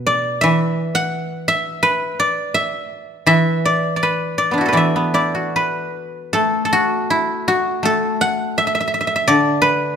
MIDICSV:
0, 0, Header, 1, 2, 480
1, 0, Start_track
1, 0, Tempo, 709220
1, 300, Time_signature, 4, 2, 24, 8
1, 2701, Tempo, 749064
1, 3181, Tempo, 798935
1, 4141, Tempo, 749064
1, 5101, Tempo, 711744
1, 6534, End_track
2, 0, Start_track
2, 0, Title_t, "Guzheng"
2, 0, Program_c, 0, 107
2, 0, Note_on_c, 0, 47, 48
2, 0, Note_on_c, 0, 71, 59
2, 44, Note_on_c, 0, 74, 74
2, 278, Note_on_c, 0, 76, 81
2, 294, Note_on_c, 0, 52, 54
2, 296, Note_off_c, 0, 47, 0
2, 642, Note_on_c, 0, 78, 83
2, 718, Note_off_c, 0, 71, 0
2, 999, Note_off_c, 0, 76, 0
2, 1002, Note_on_c, 0, 76, 89
2, 1236, Note_on_c, 0, 71, 80
2, 1296, Note_off_c, 0, 74, 0
2, 1486, Note_on_c, 0, 74, 74
2, 1719, Note_off_c, 0, 76, 0
2, 1722, Note_on_c, 0, 76, 83
2, 1729, Note_off_c, 0, 78, 0
2, 1730, Note_off_c, 0, 52, 0
2, 2209, Note_on_c, 0, 52, 56
2, 2211, Note_off_c, 0, 76, 0
2, 2214, Note_on_c, 0, 76, 86
2, 2471, Note_off_c, 0, 74, 0
2, 2473, Note_on_c, 0, 74, 70
2, 2622, Note_off_c, 0, 71, 0
2, 2679, Note_off_c, 0, 74, 0
2, 2682, Note_on_c, 0, 74, 44
2, 2725, Note_on_c, 0, 71, 58
2, 2948, Note_off_c, 0, 74, 0
2, 2950, Note_on_c, 0, 74, 67
2, 3036, Note_on_c, 0, 59, 31
2, 3049, Note_on_c, 0, 62, 32
2, 3076, Note_on_c, 0, 64, 30
2, 3097, Note_on_c, 0, 66, 35
2, 3127, Note_on_c, 0, 69, 38
2, 3143, Note_off_c, 0, 71, 0
2, 3146, Note_on_c, 0, 71, 39
2, 3169, Note_off_c, 0, 52, 0
2, 3169, Note_off_c, 0, 74, 0
2, 3172, Note_on_c, 0, 74, 41
2, 3177, Note_on_c, 0, 52, 47
2, 3198, Note_off_c, 0, 76, 0
2, 3200, Note_on_c, 0, 76, 56
2, 3310, Note_off_c, 0, 59, 0
2, 3312, Note_on_c, 0, 59, 37
2, 3418, Note_off_c, 0, 64, 0
2, 3420, Note_off_c, 0, 74, 0
2, 3420, Note_on_c, 0, 64, 35
2, 3423, Note_on_c, 0, 74, 64
2, 3543, Note_off_c, 0, 66, 0
2, 3546, Note_on_c, 0, 66, 34
2, 3671, Note_off_c, 0, 71, 0
2, 3673, Note_on_c, 0, 71, 65
2, 4134, Note_off_c, 0, 69, 0
2, 4136, Note_on_c, 0, 69, 71
2, 4143, Note_on_c, 0, 57, 49
2, 4241, Note_off_c, 0, 76, 0
2, 4268, Note_off_c, 0, 59, 0
2, 4339, Note_off_c, 0, 69, 0
2, 4341, Note_on_c, 0, 69, 49
2, 4383, Note_off_c, 0, 64, 0
2, 4383, Note_off_c, 0, 66, 0
2, 4390, Note_on_c, 0, 66, 71
2, 4560, Note_off_c, 0, 74, 0
2, 4620, Note_off_c, 0, 52, 0
2, 4632, Note_on_c, 0, 64, 63
2, 4782, Note_off_c, 0, 62, 0
2, 4870, Note_off_c, 0, 66, 0
2, 4872, Note_on_c, 0, 66, 71
2, 4954, Note_off_c, 0, 71, 0
2, 5089, Note_off_c, 0, 57, 0
2, 5097, Note_on_c, 0, 57, 47
2, 5110, Note_off_c, 0, 69, 0
2, 5113, Note_on_c, 0, 69, 73
2, 5354, Note_on_c, 0, 78, 79
2, 5601, Note_on_c, 0, 76, 76
2, 5660, Note_off_c, 0, 76, 0
2, 5663, Note_on_c, 0, 76, 52
2, 5713, Note_off_c, 0, 76, 0
2, 5716, Note_on_c, 0, 76, 57
2, 5751, Note_off_c, 0, 76, 0
2, 5754, Note_on_c, 0, 76, 42
2, 5799, Note_off_c, 0, 76, 0
2, 5802, Note_on_c, 0, 76, 47
2, 5843, Note_off_c, 0, 76, 0
2, 5846, Note_on_c, 0, 76, 45
2, 5888, Note_off_c, 0, 76, 0
2, 5890, Note_on_c, 0, 76, 51
2, 5932, Note_off_c, 0, 76, 0
2, 5934, Note_on_c, 0, 76, 51
2, 5989, Note_off_c, 0, 76, 0
2, 5992, Note_on_c, 0, 76, 63
2, 6072, Note_on_c, 0, 74, 84
2, 6077, Note_on_c, 0, 50, 53
2, 6302, Note_on_c, 0, 71, 77
2, 6369, Note_off_c, 0, 64, 0
2, 6436, Note_off_c, 0, 78, 0
2, 6501, Note_off_c, 0, 66, 0
2, 6534, Note_off_c, 0, 50, 0
2, 6534, Note_off_c, 0, 57, 0
2, 6534, Note_off_c, 0, 69, 0
2, 6534, Note_off_c, 0, 71, 0
2, 6534, Note_off_c, 0, 74, 0
2, 6534, Note_off_c, 0, 76, 0
2, 6534, End_track
0, 0, End_of_file